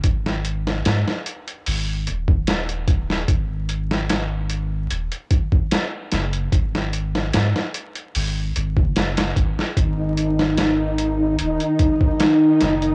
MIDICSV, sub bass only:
0, 0, Header, 1, 2, 480
1, 0, Start_track
1, 0, Tempo, 810811
1, 22, Time_signature, 4, 2, 24, 8
1, 7665, End_track
2, 0, Start_track
2, 0, Title_t, "Sub bass"
2, 0, Program_c, 0, 38
2, 25, Note_on_c, 0, 32, 96
2, 482, Note_off_c, 0, 32, 0
2, 508, Note_on_c, 0, 44, 105
2, 617, Note_off_c, 0, 44, 0
2, 989, Note_on_c, 0, 32, 77
2, 1225, Note_on_c, 0, 27, 101
2, 1234, Note_off_c, 0, 32, 0
2, 1922, Note_off_c, 0, 27, 0
2, 1945, Note_on_c, 0, 32, 99
2, 2882, Note_off_c, 0, 32, 0
2, 2908, Note_on_c, 0, 27, 92
2, 3016, Note_off_c, 0, 27, 0
2, 3628, Note_on_c, 0, 30, 98
2, 3838, Note_off_c, 0, 30, 0
2, 3865, Note_on_c, 0, 32, 95
2, 4322, Note_off_c, 0, 32, 0
2, 4350, Note_on_c, 0, 44, 106
2, 4458, Note_off_c, 0, 44, 0
2, 4828, Note_on_c, 0, 32, 76
2, 5038, Note_off_c, 0, 32, 0
2, 5070, Note_on_c, 0, 32, 91
2, 5178, Note_off_c, 0, 32, 0
2, 5192, Note_on_c, 0, 30, 82
2, 5522, Note_off_c, 0, 30, 0
2, 5547, Note_on_c, 0, 32, 93
2, 5656, Note_off_c, 0, 32, 0
2, 5786, Note_on_c, 0, 32, 93
2, 6723, Note_off_c, 0, 32, 0
2, 6748, Note_on_c, 0, 27, 95
2, 6856, Note_off_c, 0, 27, 0
2, 7471, Note_on_c, 0, 30, 93
2, 7665, Note_off_c, 0, 30, 0
2, 7665, End_track
0, 0, End_of_file